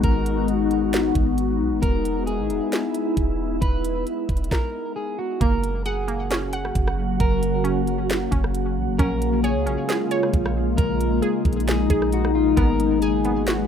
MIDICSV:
0, 0, Header, 1, 6, 480
1, 0, Start_track
1, 0, Key_signature, 6, "major"
1, 0, Tempo, 447761
1, 39, Time_signature, 4, 2, 24, 8
1, 14657, End_track
2, 0, Start_track
2, 0, Title_t, "Clean electric guitar"
2, 0, Program_c, 0, 27
2, 41, Note_on_c, 0, 70, 109
2, 491, Note_off_c, 0, 70, 0
2, 1952, Note_on_c, 0, 70, 106
2, 2406, Note_off_c, 0, 70, 0
2, 2429, Note_on_c, 0, 68, 87
2, 3831, Note_off_c, 0, 68, 0
2, 3874, Note_on_c, 0, 71, 100
2, 4327, Note_off_c, 0, 71, 0
2, 4839, Note_on_c, 0, 70, 82
2, 5290, Note_off_c, 0, 70, 0
2, 5316, Note_on_c, 0, 68, 80
2, 5545, Note_off_c, 0, 68, 0
2, 5559, Note_on_c, 0, 66, 80
2, 5787, Note_off_c, 0, 66, 0
2, 5803, Note_on_c, 0, 70, 102
2, 6252, Note_off_c, 0, 70, 0
2, 6278, Note_on_c, 0, 68, 83
2, 7675, Note_off_c, 0, 68, 0
2, 7721, Note_on_c, 0, 70, 125
2, 8171, Note_off_c, 0, 70, 0
2, 9631, Note_on_c, 0, 70, 110
2, 10086, Note_off_c, 0, 70, 0
2, 10116, Note_on_c, 0, 68, 95
2, 11514, Note_off_c, 0, 68, 0
2, 11550, Note_on_c, 0, 70, 101
2, 12005, Note_off_c, 0, 70, 0
2, 12514, Note_on_c, 0, 68, 81
2, 12967, Note_off_c, 0, 68, 0
2, 13009, Note_on_c, 0, 66, 81
2, 13232, Note_off_c, 0, 66, 0
2, 13239, Note_on_c, 0, 65, 78
2, 13467, Note_off_c, 0, 65, 0
2, 13471, Note_on_c, 0, 70, 99
2, 13926, Note_off_c, 0, 70, 0
2, 13960, Note_on_c, 0, 68, 87
2, 14657, Note_off_c, 0, 68, 0
2, 14657, End_track
3, 0, Start_track
3, 0, Title_t, "Synth pluck"
3, 0, Program_c, 1, 84
3, 5795, Note_on_c, 1, 58, 96
3, 6279, Note_on_c, 1, 78, 106
3, 6504, Note_off_c, 1, 58, 0
3, 6517, Note_on_c, 1, 58, 89
3, 6760, Note_on_c, 1, 61, 97
3, 6989, Note_off_c, 1, 78, 0
3, 7002, Note_on_c, 1, 78, 93
3, 7957, Note_off_c, 1, 58, 0
3, 8177, Note_off_c, 1, 61, 0
3, 8190, Note_on_c, 1, 61, 96
3, 8440, Note_off_c, 1, 78, 0
3, 8900, Note_off_c, 1, 61, 0
3, 8913, Note_on_c, 1, 61, 83
3, 9626, Note_off_c, 1, 61, 0
3, 9639, Note_on_c, 1, 61, 105
3, 10120, Note_on_c, 1, 73, 101
3, 10346, Note_off_c, 1, 61, 0
3, 10359, Note_on_c, 1, 61, 84
3, 10598, Note_on_c, 1, 68, 94
3, 10828, Note_off_c, 1, 73, 0
3, 10841, Note_on_c, 1, 73, 103
3, 11799, Note_off_c, 1, 61, 0
3, 12018, Note_off_c, 1, 68, 0
3, 12031, Note_on_c, 1, 68, 92
3, 12279, Note_off_c, 1, 73, 0
3, 12746, Note_off_c, 1, 68, 0
3, 12759, Note_on_c, 1, 68, 85
3, 13476, Note_on_c, 1, 59, 98
3, 13479, Note_off_c, 1, 68, 0
3, 13961, Note_on_c, 1, 80, 97
3, 14191, Note_off_c, 1, 59, 0
3, 14204, Note_on_c, 1, 59, 88
3, 14436, Note_on_c, 1, 66, 97
3, 14657, Note_off_c, 1, 59, 0
3, 14657, Note_off_c, 1, 66, 0
3, 14657, Note_off_c, 1, 80, 0
3, 14657, End_track
4, 0, Start_track
4, 0, Title_t, "Ambient pad"
4, 0, Program_c, 2, 92
4, 0, Note_on_c, 2, 56, 76
4, 0, Note_on_c, 2, 59, 76
4, 0, Note_on_c, 2, 63, 82
4, 0, Note_on_c, 2, 66, 96
4, 1919, Note_off_c, 2, 66, 0
4, 1960, Note_on_c, 2, 64, 92
4, 4795, Note_off_c, 2, 59, 0
4, 4795, Note_off_c, 2, 63, 0
4, 4797, Note_off_c, 2, 56, 0
4, 4810, Note_off_c, 2, 64, 0
4, 5799, Note_on_c, 2, 58, 77
4, 5800, Note_on_c, 2, 49, 81
4, 5800, Note_on_c, 2, 66, 91
4, 5802, Note_on_c, 2, 54, 77
4, 9601, Note_off_c, 2, 54, 0
4, 9601, Note_off_c, 2, 66, 0
4, 9643, Note_on_c, 2, 56, 78
4, 9643, Note_on_c, 2, 65, 90
4, 11541, Note_off_c, 2, 65, 0
4, 11558, Note_on_c, 2, 63, 96
4, 13436, Note_off_c, 2, 49, 0
4, 13436, Note_off_c, 2, 58, 0
4, 13459, Note_off_c, 2, 63, 0
4, 13479, Note_on_c, 2, 66, 91
4, 13480, Note_on_c, 2, 54, 84
4, 13480, Note_on_c, 2, 59, 81
4, 14657, Note_off_c, 2, 54, 0
4, 14657, Note_off_c, 2, 56, 0
4, 14657, Note_off_c, 2, 59, 0
4, 14657, Note_off_c, 2, 66, 0
4, 14657, End_track
5, 0, Start_track
5, 0, Title_t, "808-style bass"
5, 0, Program_c, 3, 38
5, 38, Note_on_c, 3, 32, 108
5, 1195, Note_off_c, 3, 32, 0
5, 1237, Note_on_c, 3, 32, 107
5, 1717, Note_on_c, 3, 35, 100
5, 1733, Note_off_c, 3, 32, 0
5, 1838, Note_on_c, 3, 32, 94
5, 1854, Note_off_c, 3, 35, 0
5, 1952, Note_off_c, 3, 32, 0
5, 1958, Note_on_c, 3, 28, 102
5, 2558, Note_on_c, 3, 32, 97
5, 2574, Note_off_c, 3, 28, 0
5, 2679, Note_on_c, 3, 28, 105
5, 2695, Note_off_c, 3, 32, 0
5, 2792, Note_off_c, 3, 28, 0
5, 3399, Note_on_c, 3, 28, 108
5, 3859, Note_off_c, 3, 28, 0
5, 3879, Note_on_c, 3, 28, 109
5, 4339, Note_off_c, 3, 28, 0
5, 4599, Note_on_c, 3, 28, 101
5, 4829, Note_off_c, 3, 28, 0
5, 5800, Note_on_c, 3, 30, 109
5, 7196, Note_off_c, 3, 30, 0
5, 7241, Note_on_c, 3, 30, 111
5, 7700, Note_off_c, 3, 30, 0
5, 7719, Note_on_c, 3, 30, 114
5, 8876, Note_off_c, 3, 30, 0
5, 8920, Note_on_c, 3, 30, 110
5, 9401, Note_on_c, 3, 34, 105
5, 9417, Note_off_c, 3, 30, 0
5, 9519, Note_on_c, 3, 30, 96
5, 9535, Note_off_c, 3, 34, 0
5, 9633, Note_off_c, 3, 30, 0
5, 9640, Note_on_c, 3, 34, 104
5, 10241, Note_on_c, 3, 37, 97
5, 10257, Note_off_c, 3, 34, 0
5, 10360, Note_on_c, 3, 34, 99
5, 10376, Note_off_c, 3, 37, 0
5, 10473, Note_off_c, 3, 34, 0
5, 11079, Note_on_c, 3, 34, 108
5, 11540, Note_off_c, 3, 34, 0
5, 11558, Note_on_c, 3, 34, 110
5, 12019, Note_off_c, 3, 34, 0
5, 12275, Note_on_c, 3, 34, 113
5, 12738, Note_off_c, 3, 34, 0
5, 12757, Note_on_c, 3, 34, 112
5, 13449, Note_off_c, 3, 34, 0
5, 13477, Note_on_c, 3, 32, 108
5, 14657, Note_off_c, 3, 32, 0
5, 14657, End_track
6, 0, Start_track
6, 0, Title_t, "Drums"
6, 38, Note_on_c, 9, 36, 116
6, 38, Note_on_c, 9, 42, 70
6, 145, Note_off_c, 9, 36, 0
6, 145, Note_off_c, 9, 42, 0
6, 279, Note_on_c, 9, 42, 80
6, 387, Note_off_c, 9, 42, 0
6, 516, Note_on_c, 9, 42, 60
6, 623, Note_off_c, 9, 42, 0
6, 760, Note_on_c, 9, 42, 61
6, 867, Note_off_c, 9, 42, 0
6, 997, Note_on_c, 9, 42, 81
6, 1007, Note_on_c, 9, 38, 109
6, 1104, Note_off_c, 9, 42, 0
6, 1114, Note_off_c, 9, 38, 0
6, 1236, Note_on_c, 9, 42, 75
6, 1237, Note_on_c, 9, 36, 88
6, 1343, Note_off_c, 9, 42, 0
6, 1344, Note_off_c, 9, 36, 0
6, 1478, Note_on_c, 9, 42, 72
6, 1585, Note_off_c, 9, 42, 0
6, 1958, Note_on_c, 9, 36, 116
6, 1958, Note_on_c, 9, 42, 72
6, 2065, Note_off_c, 9, 36, 0
6, 2065, Note_off_c, 9, 42, 0
6, 2201, Note_on_c, 9, 42, 81
6, 2308, Note_off_c, 9, 42, 0
6, 2437, Note_on_c, 9, 42, 60
6, 2544, Note_off_c, 9, 42, 0
6, 2680, Note_on_c, 9, 42, 61
6, 2787, Note_off_c, 9, 42, 0
6, 2917, Note_on_c, 9, 42, 78
6, 2928, Note_on_c, 9, 38, 118
6, 3024, Note_off_c, 9, 42, 0
6, 3035, Note_off_c, 9, 38, 0
6, 3157, Note_on_c, 9, 42, 77
6, 3264, Note_off_c, 9, 42, 0
6, 3398, Note_on_c, 9, 42, 70
6, 3399, Note_on_c, 9, 36, 93
6, 3506, Note_off_c, 9, 36, 0
6, 3506, Note_off_c, 9, 42, 0
6, 3879, Note_on_c, 9, 36, 117
6, 3879, Note_on_c, 9, 42, 72
6, 3987, Note_off_c, 9, 36, 0
6, 3987, Note_off_c, 9, 42, 0
6, 4122, Note_on_c, 9, 42, 81
6, 4229, Note_off_c, 9, 42, 0
6, 4360, Note_on_c, 9, 42, 62
6, 4467, Note_off_c, 9, 42, 0
6, 4599, Note_on_c, 9, 36, 91
6, 4601, Note_on_c, 9, 42, 36
6, 4682, Note_off_c, 9, 42, 0
6, 4682, Note_on_c, 9, 42, 48
6, 4707, Note_off_c, 9, 36, 0
6, 4761, Note_off_c, 9, 42, 0
6, 4761, Note_on_c, 9, 42, 63
6, 4840, Note_on_c, 9, 36, 108
6, 4847, Note_on_c, 9, 38, 91
6, 4868, Note_off_c, 9, 42, 0
6, 4947, Note_off_c, 9, 36, 0
6, 4955, Note_off_c, 9, 38, 0
6, 5799, Note_on_c, 9, 42, 74
6, 5800, Note_on_c, 9, 36, 126
6, 5906, Note_off_c, 9, 42, 0
6, 5907, Note_off_c, 9, 36, 0
6, 6041, Note_on_c, 9, 42, 77
6, 6148, Note_off_c, 9, 42, 0
6, 6278, Note_on_c, 9, 42, 63
6, 6385, Note_off_c, 9, 42, 0
6, 6522, Note_on_c, 9, 42, 63
6, 6629, Note_off_c, 9, 42, 0
6, 6759, Note_on_c, 9, 42, 84
6, 6770, Note_on_c, 9, 38, 120
6, 6867, Note_off_c, 9, 42, 0
6, 6877, Note_off_c, 9, 38, 0
6, 6998, Note_on_c, 9, 42, 83
6, 7105, Note_off_c, 9, 42, 0
6, 7128, Note_on_c, 9, 37, 86
6, 7236, Note_off_c, 9, 37, 0
6, 7240, Note_on_c, 9, 36, 96
6, 7240, Note_on_c, 9, 42, 76
6, 7347, Note_off_c, 9, 36, 0
6, 7347, Note_off_c, 9, 42, 0
6, 7371, Note_on_c, 9, 37, 100
6, 7478, Note_off_c, 9, 37, 0
6, 7719, Note_on_c, 9, 36, 124
6, 7719, Note_on_c, 9, 42, 74
6, 7826, Note_off_c, 9, 42, 0
6, 7827, Note_off_c, 9, 36, 0
6, 7961, Note_on_c, 9, 42, 82
6, 8069, Note_off_c, 9, 42, 0
6, 8198, Note_on_c, 9, 42, 64
6, 8306, Note_off_c, 9, 42, 0
6, 8441, Note_on_c, 9, 42, 63
6, 8548, Note_off_c, 9, 42, 0
6, 8679, Note_on_c, 9, 42, 82
6, 8690, Note_on_c, 9, 38, 120
6, 8786, Note_off_c, 9, 42, 0
6, 8797, Note_off_c, 9, 38, 0
6, 8919, Note_on_c, 9, 42, 79
6, 8920, Note_on_c, 9, 36, 91
6, 9026, Note_off_c, 9, 42, 0
6, 9027, Note_off_c, 9, 36, 0
6, 9049, Note_on_c, 9, 37, 90
6, 9156, Note_off_c, 9, 37, 0
6, 9160, Note_on_c, 9, 42, 74
6, 9268, Note_off_c, 9, 42, 0
6, 9640, Note_on_c, 9, 36, 115
6, 9641, Note_on_c, 9, 42, 72
6, 9747, Note_off_c, 9, 36, 0
6, 9748, Note_off_c, 9, 42, 0
6, 9881, Note_on_c, 9, 42, 81
6, 9988, Note_off_c, 9, 42, 0
6, 10119, Note_on_c, 9, 42, 65
6, 10226, Note_off_c, 9, 42, 0
6, 10364, Note_on_c, 9, 42, 63
6, 10471, Note_off_c, 9, 42, 0
6, 10600, Note_on_c, 9, 42, 84
6, 10610, Note_on_c, 9, 38, 119
6, 10707, Note_off_c, 9, 42, 0
6, 10718, Note_off_c, 9, 38, 0
6, 10839, Note_on_c, 9, 42, 78
6, 10946, Note_off_c, 9, 42, 0
6, 10969, Note_on_c, 9, 37, 89
6, 11076, Note_off_c, 9, 37, 0
6, 11079, Note_on_c, 9, 36, 94
6, 11079, Note_on_c, 9, 42, 75
6, 11186, Note_off_c, 9, 42, 0
6, 11187, Note_off_c, 9, 36, 0
6, 11209, Note_on_c, 9, 37, 102
6, 11317, Note_off_c, 9, 37, 0
6, 11557, Note_on_c, 9, 42, 77
6, 11558, Note_on_c, 9, 36, 121
6, 11664, Note_off_c, 9, 42, 0
6, 11665, Note_off_c, 9, 36, 0
6, 11798, Note_on_c, 9, 42, 83
6, 11905, Note_off_c, 9, 42, 0
6, 12034, Note_on_c, 9, 42, 61
6, 12141, Note_off_c, 9, 42, 0
6, 12275, Note_on_c, 9, 42, 39
6, 12276, Note_on_c, 9, 36, 94
6, 12356, Note_off_c, 9, 42, 0
6, 12356, Note_on_c, 9, 42, 49
6, 12383, Note_off_c, 9, 36, 0
6, 12436, Note_off_c, 9, 42, 0
6, 12436, Note_on_c, 9, 42, 64
6, 12517, Note_off_c, 9, 42, 0
6, 12517, Note_on_c, 9, 42, 83
6, 12527, Note_on_c, 9, 38, 116
6, 12624, Note_off_c, 9, 42, 0
6, 12635, Note_off_c, 9, 38, 0
6, 12757, Note_on_c, 9, 36, 88
6, 12757, Note_on_c, 9, 42, 83
6, 12864, Note_off_c, 9, 36, 0
6, 12864, Note_off_c, 9, 42, 0
6, 12886, Note_on_c, 9, 37, 89
6, 12994, Note_off_c, 9, 37, 0
6, 12998, Note_on_c, 9, 42, 76
6, 13105, Note_off_c, 9, 42, 0
6, 13128, Note_on_c, 9, 37, 99
6, 13236, Note_off_c, 9, 37, 0
6, 13478, Note_on_c, 9, 36, 121
6, 13478, Note_on_c, 9, 42, 77
6, 13585, Note_off_c, 9, 36, 0
6, 13585, Note_off_c, 9, 42, 0
6, 13719, Note_on_c, 9, 42, 82
6, 13826, Note_off_c, 9, 42, 0
6, 13956, Note_on_c, 9, 42, 65
6, 14064, Note_off_c, 9, 42, 0
6, 14199, Note_on_c, 9, 42, 59
6, 14306, Note_off_c, 9, 42, 0
6, 14436, Note_on_c, 9, 42, 82
6, 14446, Note_on_c, 9, 38, 116
6, 14543, Note_off_c, 9, 42, 0
6, 14554, Note_off_c, 9, 38, 0
6, 14657, End_track
0, 0, End_of_file